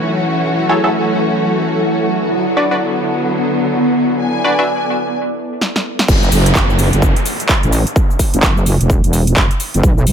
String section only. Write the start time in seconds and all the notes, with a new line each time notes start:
Already playing: E3 A3 C#4 F#4
2.33 D3 F#3 B3
4.21 G#5